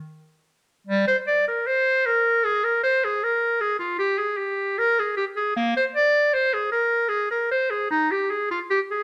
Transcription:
0.87 G3
1.08 C5
1.27 D5
1.48 A#4
1.67 C5
2.06 A#4
2.44 G#4
2.64 A#4
2.83 C5
3.05 G#4
3.24 A#4
3.61 G#4
3.79 F4
3.99 G4
4.18 G#4
4.38 G4
4.79 A#4
4.99 G#4
5.17 G4
5.36 G#4
5.56 A#3
5.77 C5
5.95 D5
6.34 C5
6.54 G#4
6.72 A#4
7.09 G#4
7.31 A#4
7.51 C5
7.71 G#4
7.91 D#4
8.11 G4
8.30 G#4
8.51 F4
8.70 G4
8.91 G#4

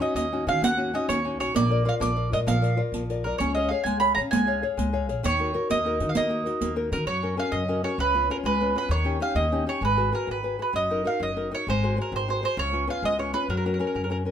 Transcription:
0.00 C#4 D#4 F#4 D#5
0.15 D#2 A#3 D#5, riq
0.32 C#4 D#4 F#4
0.47 D#3 C#4 D#4 F#4 F5, riq
0.62 D#2 A#3 F#5, riq
0.77 C#4 D#4 F#4
0.93 C#4 D#4 F#4 D#5
1.09 D#2 A#3 C#5, riq
1.25 C#4 D#4 F#4
1.39 B1 C#4 D#4 F#4 C#5, riq
1.54 A#1 A#3 D5, riq
1.70 F4 A#4 D5
1.85 F4 A#4 D5 F5
2.00 A#1 F3 D5, riq
2.16 F4 A#4 D5
2.32 A#2 F4 A#4 D5 D#5, riq
2.47 A#1 F3 F5, riq
2.62 F4 A#4 D5, riq
2.77 F4 A#4 D5
2.92 A#1 F3, riq
3.10 F4 A#4 D5, riq
3.24 B1 F4 A#4 D5
3.38 C#2 C#4 C#5, riq
3.55 G#4 C#5 D#5 F5
3.69 G#4 C#5 F5
3.84 C#2 G#3 G#5, riq
4.00 G#4 C#5 F5 B5
4.15 C#3 G#4 C#5 F5 A#5, riq
4.31 C#2 G#3 G#5, riq
4.47 G#4 C#5 F5
4.62 G#4 C#5 F5
4.77 C#2 G#3, riq
4.93 G#4 C#5 F5
5.09 A#1 G#4 C#5 F5, riq
5.23 D#2 D#3 C#5, riq
5.39 D#4 F#4 A#4
5.54 D#4 F#4 A#4
5.70 D#2 A#3 D#5, riq
5.85 D#4 F#4 A#4
6.00 D#3 D#4 F#4 A#4, riq
6.09 F5
6.15 D#2 A#3 D#5, riq
6.29 D#4 F#4 A#4
6.46 D#4 F#4 A#4, riq
6.61 D#2 A#3, riq
6.76 D#4 F#4 A#4
6.92 D#3 D#4 F#4 A#4 D#5, riq
7.06 F#2 F#3 C#5
7.22 C#4 F#4 A#4
7.37 C#4 F#4 A#4 F5
7.52 F#2 C#3 D#5
7.68 C#4 F#4 A#4
7.83 C#4 F#4 A#4 C#5
7.98 C#2 C#3 B4
8.14 B3 C#4 F4
8.30 B3 C#4 F4 A#4
8.44 C#2 G#3 B4
8.61 B3 C#4 F4
8.75 B3 C#4 F4 B4
8.89 D#2 D#3 C#5
9.04 C#4 D#4 G4
9.20 C#4 D#4 G4 F5
9.35 D#2 A#3 D#5
9.52 C#4 D#4 G4
9.67 C#4 D#4 G4 C#5
9.81 G#1 G#3 B4
9.97 F#4 G#4 B4
10.12 F#4 G#4 A#4 B4
10.27 G#1 D#3
10.31 B4
10.43 F#4 G#4 B4
10.59 F#4 G#4 B4
10.73 F#1 F#3 D#5
10.90 D#4 F#4 A#4
11.04 D#4 F#4 A#4 F5
11.20 F#1 F#3 D#5
11.36 D#4 F#4 A#4
11.51 D#4 F#4 A#4 C#5
11.67 G#1 G#3 C5
11.83 F#4 G#4 C5
11.97 F#4 G#4 C5
12.02 A#4
12.12 G#1 D#3
12.16 C5
12.28 F#4 G#4 C5
12.43 F#4 G#4 C5
12.57 C#2 C#3 C#5
12.72 B3 C#4 F4
12.87 B3 C#4 F4 F5
13.03 C#2 G#3 D#5
13.19 B3 C#4 F4 C#5
13.33 B3 C#4 F4 B4
13.48 F#2 F#3 A#4
13.57 A#4
13.65 C#4 F#4 A#4
13.74 A#4
13.79 C#4 F#4 A#4
13.87 A#4
13.95 F#2 C#3 A#4
14.04 A#4
14.10 C#4 F#4 A#4
14.25 C#4 F#4 A#4

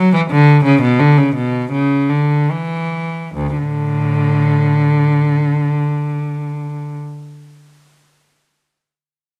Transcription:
Already playing: F#3
0.14 E3
0.31 D3
0.65 C#3
0.82 B2
1.00 D3
1.17 C#3
1.36 B2
1.72 C#3
2.09 D3
2.51 E3
3.36 D2
3.59 A2 D3

